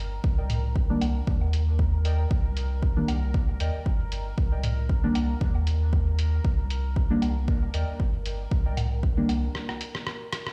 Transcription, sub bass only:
Already playing: G1
0.24 C2
1.01 C2
1.27 D#2
2.31 C2
3.08 C2
3.60 D#2
3.86 G1
4.38 C2
5.15 C2
5.41 D#2
6.45 C2
7.22 C2
7.74 D#2
8.00 G1
8.51 C2
9.29 C2

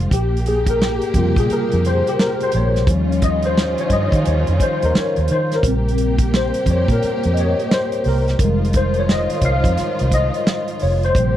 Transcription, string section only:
0.11 A#2 A#3 G4
2.87 D#3 G3 C#4 F4
5.62 A#2 A#3 G4
8.38 D#3 F3 F4
11.13 A#2 A#3 G4

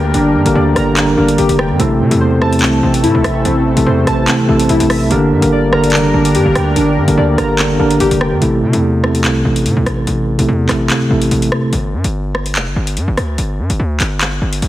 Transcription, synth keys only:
Already playing: D4 G4 D5 G5 A#5
0.14 D4
0.56 D5
0.76 A#5
0.97 D4
1.17 D4
1.38 G4
1.59 G5
1.79 C4
2.21 C5
2.42 A5
2.63 C4
2.83 C4
3.03 E4
3.24 E5
3.45 C4
3.86 C5
4.07 A5
4.28 C4
4.48 C4
4.69 E4
4.90 E5
5.11 D4
5.52 D5
5.73 A#5
5.94 D4
6.14 D4
6.35 G4
6.55 G5
6.77 D4
7.18 D5
7.38 A#5
7.59 D4
7.79 D4
8.00 G4
8.21 G5

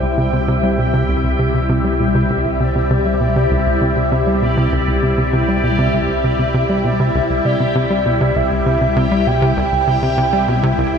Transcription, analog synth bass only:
0.03 C2
0.18 C3
0.33 C3
0.48 C3
0.63 G3
0.78 B2
0.94 C3
1.09 C2
1.24 C2
1.39 C3
1.54 C3
1.69 C3
1.85 G3
2.00 B2
2.15 C3
2.30 C2
2.45 C2
2.60 C3
2.76 C3
2.91 C3
3.06 G3
3.21 B2
3.36 C3
3.51 C2
3.66 C2
3.81 C3
3.97 C3
4.12 C3
4.27 G3
4.42 B2
4.57 C3
4.72 C2
4.88 C2
5.03 C3
5.18 C3
5.33 C3
5.48 G3
5.63 B2
5.79 C3
5.94 C2
6.09 C2
6.24 C3
6.39 C3
6.54 C3
6.70 G3
6.85 B2
7.00 C3
7.15 C2
7.30 C2
7.45 C3
7.60 C3
7.75 C3
7.90 G3
8.06 B2
8.21 C3
8.36 C2
8.51 C2
8.66 C3
8.81 C3
8.96 C3
9.12 G3
9.27 B2
9.42 C3
9.57 C2
9.72 C2
9.88 C3
10.03 C3
10.18 C3
10.33 G3
10.48 B2
10.63 C3
10.78 C2
10.93 C2

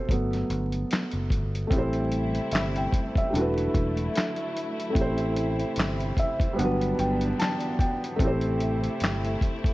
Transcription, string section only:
1.71 C3 G3 A3 E4
3.33 D3 F#3 E4
4.96 C3 E3
6.57 D3 B3 D4
8.20 C3 A3 E4

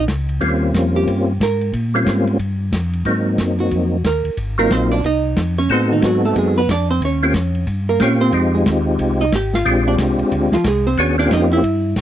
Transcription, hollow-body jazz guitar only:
0.96 G4
1.43 A#4
3.60 F#4
4.07 A#4
4.59 A#3 A#4
4.72 C4 C5
4.92 D4 D5
5.06 D#4 D#5
5.58 C#4 C#5
5.72 C4 C5
5.92 D#3 D#4
6.06 F#3 F#4
6.25 A3 A4
6.38 G#3 G#4
6.58 B3 B4
6.71 D4 D5
6.90 C4 C5
7.05 C#4 C#5
7.89 A#3 A#4
8.02 C#4 C#5
8.21 C4 C5
8.55 G#3 G#4
9.21 D#4 D#5
9.35 G4 G5
9.55 F4 F5
9.87 D4 D5
10.54 F3 F4
10.68 G#3 G#4
10.87 C4 C5
11.00 C#4 C#5
11.19 D4 D5
11.33 D#4 D#5
11.53 E4 E5

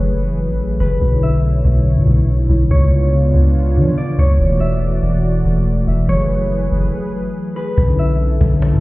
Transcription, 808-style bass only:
Already playing: F#1
0.49 A1
0.80 F#1
1.02 B1
1.65 B1
1.97 B2
2.07 B1
2.49 B1
2.71 C#2
3.34 C#2
3.76 F3
4.19 C#2
4.40 E1
5.03 E1
5.45 E1
5.87 E1
6.09 F#1
6.72 F#1
7.78 B1
8.41 B1
8.73 B2

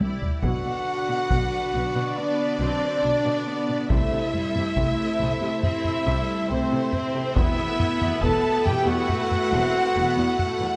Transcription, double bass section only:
0.01 C2
0.44 B1
1.30 B1
1.74 B1
2.60 B1
3.03 B1
3.90 C2
4.77 C2
5.21 C2
6.07 C2
6.50 C2
7.36 E1
8.23 E1
8.67 E1
9.53 E1
9.96 E1

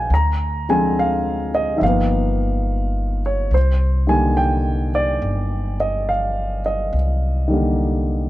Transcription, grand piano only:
Already playing: G3 A#3 D#5 F5 G5 G#5
0.14 A#5
0.69 D3 F3 G#3 C4 G#5
0.99 F5
1.55 D#5
1.77 D#3 F3 E5
1.83 A#3 F5
1.87 B3
3.26 C#5
3.54 C5
4.07 D3 D#3 G3 A#3 G#5
4.37 G5
4.95 D5
5.80 D#5
6.09 F5
6.66 D#5
7.48 D#3 G3 A#3
7.53 D3

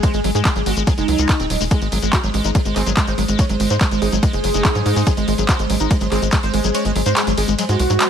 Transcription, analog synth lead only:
0.03 C5
0.14 G#3
0.24 G#3
0.35 G#4
0.45 G#3
0.56 G#3
0.66 F#4
0.77 G#3
0.87 G#3
0.98 D#4
1.71 G#4
1.82 G#3
1.92 G#3
2.03 G#3
2.13 F#4
2.24 G#3
2.34 G#3
2.44 D#4
2.55 G#3
2.65 G#3
2.76 G#4
2.86 G#3
2.97 G#3
3.07 C5
3.18 G#3
3.28 G#3
3.39 C#5
3.49 G#3
3.60 G#3
3.70 C5
3.81 G#3
3.91 G#3
4.02 G#4
4.12 G#3
4.23 G#3
4.33 G#4
5.07 G#4
5.17 G#3
5.28 G#3
5.38 G#3
5.49 F#4
5.59 G#3
5.70 G#3
5.80 D#4
5.91 G#3
6.01 G#3
6.12 G#4
6.22 G#3
6.33 G#3
6.43 C5
6.54 G#3
6.64 G#3
6.75 C#5
6.85 G#3
6.96 G#3
7.06 C5
7.17 G#3
7.27 G#3
7.38 G#4
7.48 G#3
7.59 G#3
7.69 F#4

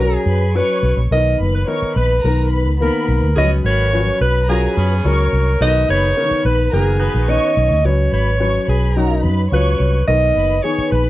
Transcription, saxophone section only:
3.36 B3 C#4 G#4
3.65 C#4 F#4 A#4
4.49 F#4 G#4 B4
4.77 B3 C#4 G#4
5.61 B3 D#4 F#4
5.89 B3 D#4 G#4
6.72 D#4 F#4 A#4
7.00 D#4 F#4 B4

